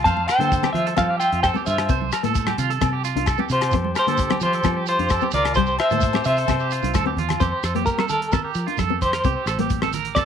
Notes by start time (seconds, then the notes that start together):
0.04 F2 C4 C5 F5 A5, kick, closed hi-hat, shekere
0.17 high conga
0.28 A#4 C5 G5, cross-stick, closed hi-hat, low agogo, shekere
0.39 D3 A#3 A4, closed hi-hat, low conga, shekere
0.52 kick, closed hi-hat, shekere
0.63 C4 G4, cross-stick, high conga, low agogo
0.72 F3 F4 C5 E5, closed hi-hat, low conga
0.86 A4, closed hi-hat, shekere
0.96 F3 C4 C5 F5, kick, cross-stick, closed hi-hat, high conga, low agogo, shekere
1.10 G4
1.18 F4 E5 G5, closed hi-hat, shekere
1.32 F2, closed hi-hat
1.42 A4 C5 G5, kick, cross-stick, closed hi-hat, low agogo, shekere
1.54 C4 G4, high conga, shekere
1.64 G2 F4 C5 E5, closed hi-hat, low conga, shekere
1.78 cross-stick, closed hi-hat, low agogo
1.89 C2 C4 C5, kick, closed hi-hat, shekere
2.01 high conga
2.12 A#4, cross-stick, closed hi-hat, low agogo, shekere
2.23 A2 A#3 A4, closed hi-hat, low conga, shekere
2.35 kick, closed hi-hat, shekere
2.47 G4, cross-stick, high conga, low agogo
2.58 C3 F4, closed hi-hat, low conga, shekere
2.70 A4, closed hi-hat, shekere
2.81 C3 C4, kick, cross-stick, closed hi-hat, high conga, low agogo, shekere
2.93 G4
3.04 F4, closed hi-hat, shekere
3.15 C2 D4, closed hi-hat
3.26 A4, kick, cross-stick, closed hi-hat, low agogo, shekere
3.37 C4 G4, high conga, shekere
3.49 C3 F4 G4 C5, closed hi-hat, low conga, shekere
3.61 cross-stick, closed hi-hat, low agogo
3.71 F2 C4, muted clean electric guitar stroke, kick, closed hi-hat, shekere
3.84 high conga
3.95 G4 A#4 C5, cross-stick, closed hi-hat, low agogo, shekere
4.07 D3 A#3 A4, closed hi-hat, shekere
4.17 kick, closed hi-hat, shekere
4.30 C4 G4, cross-stick, high conga, low agogo
4.40 F3 F4 C5, closed hi-hat, low conga, shekere
4.45 G4
4.53 A4, closed hi-hat, shekere
4.63 F3 C4, kick, cross-stick, closed hi-hat, high conga, low agogo, shekere
4.77 G4
4.86 F4 G4 C5, closed hi-hat, shekere
4.99 F2 D4, closed hi-hat
5.09 A4, kick, cross-stick, closed hi-hat, low agogo, shekere
5.21 C4 G4, high conga, shekere
5.31 C#2 F4 A#4 D5, closed hi-hat, low conga, shekere
5.45 cross-stick, closed hi-hat, low agogo
5.54 C2 G3 G4 C5, kick, closed hi-hat, shekere
5.66 shekere
5.79 A#4 C5 E5, cross-stick, closed hi-hat, low agogo
5.90 A2 A#3 A4, closed hi-hat, low conga, shekere
6.01 kick, closed hi-hat, shekere
6.13 C4 G4, cross-stick, high conga, low agogo, shekere
6.24 C3 F4 C5 E5, closed hi-hat, low conga, shekere
6.36 A4, closed hi-hat, shekere
6.48 C3 C4, kick, cross-stick, closed hi-hat, high conga, low agogo, shekere
6.60 G4, shekere
6.71 F4, closed hi-hat, shekere
6.82 C2 D4, closed hi-hat, high conga, shekere
6.94 D2 A4, kick, cross-stick, closed hi-hat, high conga, low agogo, shekere
7.06 C4 G4, high conga
7.17 E2 F4, closed hi-hat, low conga
7.29 cross-stick, closed hi-hat, low conga, low agogo
7.40 F2 C4 G4 C5, kick, closed hi-hat, shekere
7.63 F2 A4, cross-stick, closed hi-hat, shekere
7.75 A#3 G4, closed hi-hat, high conga
7.86 A#4, kick, closed hi-hat, shekere
7.98 C4 A4, cross-stick, high conga
8.09 A4 A#4, closed hi-hat, low conga, shekere
8.22 closed hi-hat
8.32 C4 A4 A#4, kick, cross-stick, closed hi-hat, low conga, shekere
8.44 G4
8.54 F3, closed hi-hat, shekere
8.67 D4 F4, closed hi-hat
8.77 F2 A4, kick, cross-stick, closed hi-hat, high conga, shekere
8.90 C4, high conga
9.01 G4 C5, kick, closed hi-hat, low conga, shekere
9.13 A#4, cross-stick, closed hi-hat, shekere
9.24 C2 C4 G4, kick, closed hi-hat, shekere
9.46 A1 A4, cross-stick, closed hi-hat, shekere
9.59 A#3 G4, closed hi-hat, high conga
9.69 kick, closed hi-hat, shekere
9.82 C4 A4, cross-stick, high conga
9.93 A#4, closed hi-hat, low conga, shekere
10.05 closed hi-hat
10.15 C4 A4 D5, kick, cross-stick, closed hi-hat, low conga, shekere